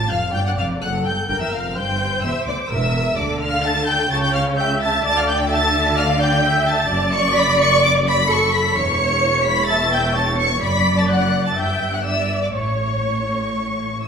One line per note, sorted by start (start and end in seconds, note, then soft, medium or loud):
0.00 0.10 A1 medium
0.00 0.10 A2 medium
0.00 0.34 F4 medium
0.10 0.34 F1 medium
0.10 0.34 F2 medium
0.10 0.33 F5 medium
0.10 0.34 F6 medium
0.33 0.46 G1 medium
0.33 0.46 G2 medium
0.33 0.81 D5 medium
0.33 0.45 G5 medium
0.33 0.39 G6 medium
0.45 0.58 F#2 medium
0.45 0.50 F#5 medium
0.45 0.52 F#6 medium
0.58 0.81 F1 medium
0.58 0.81 F2 medium
0.58 0.66 F5 medium
0.58 0.66 F6 medium
0.81 1.04 F#1 medium
0.81 1.05 F#2 medium
0.81 1.29 A4 medium
0.81 1.05 F#5 medium
0.81 0.90 F#6 medium
1.04 1.13 G1 medium
1.04 1.14 G2 medium
1.04 1.12 G5 medium
1.04 1.27 G6 medium
1.28 1.33 G1 medium
1.28 1.34 G2 medium
1.28 1.75 A#4 medium
1.28 1.40 G5 medium
1.28 1.40 G6 medium
1.40 1.45 E2 medium
1.40 1.52 E5 medium
1.40 1.53 E6 medium
1.52 1.75 F1 medium
1.52 1.75 F2 medium
1.52 1.76 F5 medium
1.52 1.76 F6 medium
1.75 2.23 G1 medium
1.75 2.23 G2 medium
1.75 2.68 C5 medium
1.75 2.22 G5 medium
1.75 2.24 G6 loud
2.22 2.30 E1 medium
2.22 2.31 E2 medium
2.22 2.47 E5 medium
2.22 2.46 E6 medium
2.46 2.54 D2 medium
2.46 2.55 D2 medium
2.46 2.56 D5 medium
2.46 2.69 D6 medium
2.68 3.16 E1 loud
2.68 3.17 E2 medium
2.68 3.17 A#4 medium
2.68 3.17 E5 medium
2.68 3.16 E6 loud
3.16 4.07 D2 medium
3.16 4.08 D3 medium
3.16 3.62 A4 medium
3.16 3.40 D5 medium
3.16 3.41 D6 medium
3.41 3.65 F5 medium
3.41 3.64 F6 loud
3.63 4.10 A4 medium
3.63 3.88 A5 medium
3.63 3.88 A6 loud
3.88 4.12 G5 medium
3.88 4.11 G6 loud
4.10 5.05 C#2 medium
4.10 5.05 C#3 medium
4.10 4.57 C#5 medium
4.10 4.17 A5 loud
4.10 4.16 A6 loud
4.22 4.35 G5 medium
4.22 4.34 G6 loud
4.34 4.43 F5 loud
4.34 4.42 F6 loud
4.57 5.05 E5 medium
4.57 4.67 G5 medium
4.57 4.81 G6 loud
4.82 5.05 A5 loud
4.82 5.03 A6 loud
5.05 6.86 D2 medium
5.05 6.87 D3 loud
5.05 5.51 D5 loud
5.05 5.17 A5 loud
5.05 5.16 A6 loud
5.17 5.29 F5 medium
5.17 5.29 F6 loud
5.28 5.52 G5 loud
5.28 5.36 G6 loud
5.50 5.96 E5 medium
5.50 5.98 A5 loud
5.50 5.97 A6 loud
5.97 6.44 D5 medium
5.97 6.21 F5 loud
5.97 6.05 F6 loud
6.20 6.68 G5 loud
6.20 6.65 G6 loud
6.44 6.89 E5 medium
6.67 7.13 A5 medium
6.67 7.13 A6 loud
6.89 8.72 F#1 medium
6.89 8.72 F#2 loud
6.89 8.26 D5 loud
7.12 7.37 C#6 loud
7.12 7.20 C#7 loud
7.34 7.60 B5 loud
7.34 7.58 B6 loud
7.60 7.84 C#6 loud
7.60 7.83 C#7 loud
7.83 7.92 D6 loud
7.83 7.91 D7 loud
8.08 8.30 B5 loud
8.08 8.30 B6 loud
8.29 8.75 A4 medium
8.29 8.54 C#6 loud
8.29 8.52 C#7 loud
8.53 8.76 B5 medium
8.53 8.75 B6 loud
8.75 10.58 E1 medium
8.75 10.58 E2 medium
8.75 9.68 C#5 loud
8.75 9.46 C#6 medium
8.75 9.45 C#7 loud
9.44 9.69 B5 medium
9.44 9.68 B6 loud
9.68 10.14 E5 medium
9.68 9.92 A5 loud
9.68 9.91 A6 loud
9.92 10.15 G5 medium
9.92 10.15 G6 loud
10.15 10.62 C#5 medium
10.15 10.25 A5 medium
10.15 10.39 A6 loud
10.39 10.62 C#6 medium
10.39 10.62 C#7 loud
10.61 11.56 F#1 medium
10.61 11.57 F#2 medium
10.61 11.56 D5 medium
10.61 10.97 B5 medium
10.61 10.97 B6 loud
10.97 11.02 A5 medium
10.97 11.10 A6 medium
11.08 11.44 F#5 medium
11.08 11.45 F#6 loud
11.45 11.50 A5 medium
11.45 11.57 A6 medium
11.56 12.54 G1 medium
11.56 12.55 G2 medium
11.56 12.04 E5 medium
11.56 11.93 G5 medium
11.56 11.93 G6 medium
11.93 12.05 F#5 medium
11.93 12.06 F#6 medium
12.04 12.53 D5 medium
12.04 12.42 E5 medium
12.04 12.41 E6 loud
12.42 12.47 D5 medium
12.42 12.48 D6 medium
12.54 14.08 A1 medium
12.54 14.08 A2 medium
12.54 14.08 C#5 medium
12.54 14.01 C#5 medium
12.54 14.00 C#6 medium
14.04 14.08 E6 medium